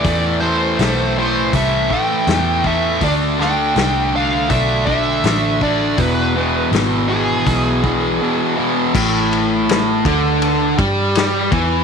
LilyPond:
<<
  \new Staff \with { instrumentName = "Lead electric guitar" } { \time 4/4 \key e \phrygian \tempo 4 = 81 d''8 c''4 c''8 e''8 g''4 e''8 | d''8 g''4 f''8 e''8 e''4 d''8 | b'4 r8 gis'2 r8 | \key c \major r1 | }
  \new Staff \with { instrumentName = "Distorted electric guitar" } { \clef bass \time 4/4 \key e \phrygian <a, e a>8 <a, e a>8 <a, e a>8 <a, e a>8 <a, e a>8 <a, e a>8 <a, e a>8 <a, e a>8 | <d a d'>8 <d a d'>8 <d a d'>8 <d a d'>8 <d a d'>8 <d a d'>8 <d a d'>8 <d a d'>8 | <e, b, e>8 <e, b, e>8 <e, b, e>8 <e, b, e>8 <e, b, e>8 <e, b, e>8 <e, b, e>8 <e, b, e>8 | \key c \major a,4. d4 g4 e8 | }
  \new Staff \with { instrumentName = "Picked electric bass" } { \clef bass \time 4/4 \key e \phrygian e,4 b,,4 c,8 r8 e,4 | d,4 c,4 b,,4 a,,4 | e,,4 gis,,4 b,,4 r4 | \key c \major a,,4. d,4 g,4 e,8 | }
  \new DrumStaff \with { instrumentName = "Drums" } \drummode { \time 4/4 <hho bd>4 <hho sn>4 <hho bd>8 bd8 <hho sn>8 bd8 | <hho bd>8 sn8 <hho sn>4 <hho bd>8 bd8 <hho sn>8 bd8 | <hho bd>4 <hho sn>4 <hho bd>8 bd8 r4 | <cymc bd>8 cymr8 <cymr sn>8 <bd cymr>8 cymr8 <bd cymr>8 <cymr sn>8 <bd cymr>8 | }
>>